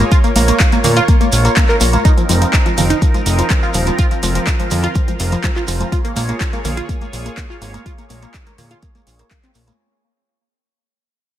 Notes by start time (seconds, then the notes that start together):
Already playing: A#3 F4 C#5
0.00 high conga, shekere
0.12 F4 A#4, kick, closed hi-hat, shekere
0.24 A#3, closed hi-hat, shekere
0.36 A#1 A#3, open hi-hat, high conga, shekere
0.48 A#3, closed hi-hat, high woodblock, shekere
0.60 kick, clap, closed hi-hat, shekere
0.72 A#3, closed hi-hat, high conga, shekere
0.84 A#2 A#3, open hi-hat, low conga, shekere
0.96 F4, closed hi-hat, high woodblock, shekere
1.08 A#3, kick, closed hi-hat, shekere
1.21 A#3, closed hi-hat, high conga, shekere
1.32 A#1, open hi-hat, shekere
1.45 A#3, closed hi-hat, high woodblock, shekere
1.56 A#3, kick, clap, closed hi-hat, high conga, shekere
1.69 A#4, clap, shekere
1.81 A#1 A#3, open hi-hat, shekere
1.93 A#3, closed hi-hat, high conga, high woodblock, shekere
2.05 F3 C4 D#4, kick, closed hi-hat, shekere
2.17 F3, closed hi-hat, shekere
2.29 F1 F3, open hi-hat, high conga, shekere
2.42 F3, closed hi-hat, high woodblock, shekere
2.53 kick, clap, closed hi-hat, shekere
2.66 F3, closed hi-hat, high conga, shekere
2.78 F1 F3, open hi-hat, low conga, shekere
2.90 D#4, closed hi-hat, high woodblock, shekere
3.02 F3, kick, closed hi-hat, shekere
3.14 F3, closed hi-hat, high conga, shekere
3.26 F1, open hi-hat, shekere
3.38 F3, closed hi-hat, high woodblock, shekere
3.50 F3, kick, clap, closed hi-hat, high conga, shekere
3.63 F4, shekere
3.74 D#1 F3, open hi-hat, shekere
3.86 F3, closed hi-hat, high conga, high woodblock, shekere
3.99 F4, kick, closed hi-hat, shekere
4.11 F3, closed hi-hat, shekere
4.23 F1 F3, open hi-hat, high conga, shekere
4.35 F3, closed hi-hat, high woodblock, shekere
4.47 kick, clap, closed hi-hat, shekere
4.60 F3, closed hi-hat, high conga, shekere
4.71 F2 F3, open hi-hat, low conga, shekere
4.83 F4, closed hi-hat, high woodblock, shekere
4.95 F3, kick, closed hi-hat, shekere
5.08 F3, closed hi-hat, high conga, shekere
5.20 F1, open hi-hat, shekere
5.32 F3, closed hi-hat, high woodblock, shekere
5.44 F3, kick, clap, closed hi-hat, high conga, shekere
5.56 F4, clap, shekere
5.68 F1 F3, open hi-hat, shekere
5.80 F3, closed hi-hat, high conga, high woodblock, shekere
5.92 A#3 F4 G#4 C#5, kick, closed hi-hat, shekere
6.05 A#3, closed hi-hat, shekere
6.16 A#1 A#3, open hi-hat, high conga, shekere
6.29 A#3, closed hi-hat, high woodblock, shekere
6.41 kick, clap, closed hi-hat, shekere
6.53 A#3, closed hi-hat, high conga, shekere
6.65 A#1 A#3, open hi-hat, low conga, shekere
6.77 F4, closed hi-hat, high woodblock, shekere
6.89 A#3, kick, closed hi-hat, shekere
7.01 A#3, closed hi-hat, high conga, shekere
7.13 A#1, open hi-hat, shekere
7.26 A#3, closed hi-hat, high woodblock, shekere
7.37 A#3, kick, clap, closed hi-hat, high conga, shekere
7.50 F4, shekere
7.62 G#1 A#3, open hi-hat, shekere
7.74 A#3, closed hi-hat, high conga, high woodblock, shekere
7.86 F4, kick, closed hi-hat, shekere
7.98 A#3, closed hi-hat, shekere
8.10 A#1 A#3, open hi-hat, high conga, shekere
8.22 A#3, closed hi-hat, high woodblock, shekere
8.34 kick, clap, closed hi-hat, shekere
8.46 A#3, closed hi-hat, high conga, shekere
8.58 A#2 A#3, open hi-hat, low conga, shekere
8.70 F4, closed hi-hat, high woodblock, shekere
8.82 A#3, kick, closed hi-hat, shekere
8.95 A#3, closed hi-hat, high conga, shekere
9.07 A#1, open hi-hat, shekere
9.19 A#3, closed hi-hat, high woodblock, shekere
9.31 A#3, kick, clap, closed hi-hat, high conga, shekere
9.43 C4, clap, closed hi-hat, shekere
9.55 A#1 A#3, open hi-hat, shekere
9.67 A#3, closed hi-hat, high conga, high woodblock, shekere